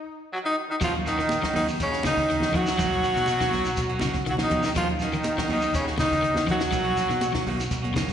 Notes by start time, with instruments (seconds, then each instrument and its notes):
Already playing: tenor saxophone D#4
0.32 trombone F#3, baritone saxophone F#3, tenor saxophone F#4
0.43 trombone D#3, baritone saxophone D#3, tenor saxophone D#4
0.68 trombone D#3, baritone saxophone D#3, tenor saxophone D#4
0.81 fingered electric bass D#2, baritone saxophone F3, trombone F3, clean electric guitar F#3 A#3 C#4 F#4, tenor saxophone F4, kick, snare, closed hi-hat, low conga, shekere
0.93 clean electric guitar C#4 F#4, closed hi-hat
1.05 trombone D#3, baritone saxophone D#3, clean electric guitar A#3 C#4 F#4, tenor saxophone D#4, snare, closed hi-hat, shekere
1.19 fingered electric bass D#3, clean electric guitar D#3, snare, closed hi-hat, shekere
1.29 closed hi-hat, high conga, shekere
1.42 clean electric guitar F#3 C#4 F#4, kick, snare, closed hi-hat
1.54 fingered electric bass D#2, trombone D#3, baritone saxophone D#3, clean electric guitar A#3 C#4 F#4, tenor saxophone D#4, snare, open hi-hat, high conga, shekere
1.68 shekere
1.80 fingered electric bass D#2, baritone saxophone C#3, trombone C#3, tenor saxophone C#4, kick, closed hi-hat, shekere
1.91 clean electric guitar C#4 F#4, snare, closed hi-hat
2.03 clean electric guitar C#3 A#3 C#4 F#4, baritone saxophone D#3, tenor saxophone D#4, kick, snare, closed hi-hat, high conga, shekere
2.09 trombone D#3
2.17 fingered electric bass D#2, kick, snare, shekere
2.30 clean electric guitar D#3, snare, closed hi-hat
2.40 clean electric guitar C#4 F#4, snare, high conga, low conga
2.52 fingered electric bass D#3, clean electric guitar F3 A#3 C#4 F#4, tenor saxophone F#4, kick, closed hi-hat, low conga, shekere
2.56 baritone saxophone F#3, trombone F#3
2.66 muted fingered electric bass stroke, snare, closed hi-hat, shekere
2.77 fingered electric bass B1, clean electric guitar D#3 F#3 A#3 C#4 F#4, kick, snare, closed hi-hat, low conga, shekere
2.91 clean electric guitar A#3 C#4 F#4, closed hi-hat
3.03 clean electric guitar D#3 A#3 C#4 F#4, closed hi-hat, shekere
3.16 fingered electric bass B2, clean electric guitar D#3, snare, closed hi-hat, shekere
3.26 closed hi-hat, high conga, shekere
3.40 clean electric guitar F#3 A#3 C#4 F#4, kick, snare, closed hi-hat
3.51 fingered electric bass B1, clean electric guitar D#3 A#3 C#4 F#4, snare, open hi-hat, high conga, shekere
3.65 snare, closed hi-hat, shekere
3.76 fingered electric bass B1, kick, closed hi-hat, shekere
3.89 clean electric guitar A#3 C#4 F#4, closed hi-hat
3.99 clean electric guitar C#3 D#3 A#3 C#4 F#4, kick, snare, closed hi-hat, high conga, shekere
4.14 fingered electric bass B1, kick, snare, shekere
4.26 clean electric guitar D#3, baritone saxophone F#3, closed hi-hat
4.31 trombone F#3, tenor saxophone F#4
4.37 baritone saxophone D#3, clean electric guitar A#3 C#4 F#4, snare, closed hi-hat, high conga, low conga
4.43 trombone D#3, tenor saxophone D#4
4.50 fingered electric bass B2, clean electric guitar D#3 A#3 C#4 F#4, kick, snare, closed hi-hat, high conga, low conga, shekere
4.63 baritone saxophone D#3, tenor saxophone D#4, muted fingered electric bass stroke, snare, closed hi-hat, shekere
4.68 trombone D#3
4.75 fingered electric bass D#2, clean electric guitar D#3 F#3 A#3 C#4 F#4, baritone saxophone F3, trombone F3, tenor saxophone F4, kick, closed hi-hat, low conga, shekere
4.88 clean electric guitar A#3 C#4, muted clean electric guitar stroke, closed hi-hat
4.99 clean electric guitar D#3 A#3 C#4 F#4, baritone saxophone D#3, tenor saxophone D#4, snare, closed hi-hat, shekere
5.06 trombone D#3
5.12 fingered electric bass D#3, clean electric guitar D#3, closed hi-hat, shekere
5.24 closed hi-hat, high conga, shekere
5.38 clean electric guitar F#3 A#3 C#4 F#4, kick, snare, closed hi-hat
5.48 fingered electric bass D#2, clean electric guitar D#3 A#3 C#4 F#4, baritone saxophone D#3, tenor saxophone D#4, open hi-hat, high conga, shekere
5.53 trombone D#3
5.62 shekere
5.74 fingered electric bass D#2, baritone saxophone C#3, tenor saxophone C#4, kick, closed hi-hat, shekere
5.79 trombone C#3
5.88 clean electric guitar A#3 C#4 F#4, snare, closed hi-hat
5.98 clean electric guitar C#3 D#3 A#3 C#4 F#4, baritone saxophone D#3, tenor saxophone D#4, kick, snare, closed hi-hat, high conga, shekere
6.03 trombone D#3
6.12 fingered electric bass D#2, kick, snare, shekere
6.22 clean electric guitar D#3, closed hi-hat
6.34 clean electric guitar A#3 C#4 F#4, snare, high conga
6.46 clean electric guitar D#3 F3 A#3 C#4 F#4, fingered electric bass D#3, trombone F#3, kick, snare, closed hi-hat, low conga, shekere
6.51 baritone saxophone F#3, tenor saxophone F#4
6.60 muted fingered electric bass stroke, snare, closed hi-hat, shekere
6.71 fingered electric bass B1, clean electric guitar D#3 F#3 A#3 C#4 F#4, kick, closed hi-hat, low conga, shekere
6.84 clean electric guitar A#3 C#4 F#4, closed hi-hat
6.97 clean electric guitar D#3 A#3 C#4 F#4, snare, closed hi-hat, shekere
7.09 fingered electric bass B2, clean electric guitar D#3, snare, closed hi-hat, shekere
7.21 closed hi-hat, high conga, shekere
7.33 clean electric guitar F#3 A#3 C#4, kick, snare, closed hi-hat
7.47 fingered electric bass B1, clean electric guitar D#3 A#3 C#4 F#4, open hi-hat, high conga, shekere
7.60 snare, shekere
7.71 fingered electric bass B1, kick, closed hi-hat, shekere
7.83 clean electric guitar A#3 C#4 F#4, closed hi-hat, high conga
7.94 clean electric guitar C#3 D#3 A#3 C#4 F#4, kick, snare, closed hi-hat, high conga, shekere
8.08 fingered electric bass B1, kick, snare, shekere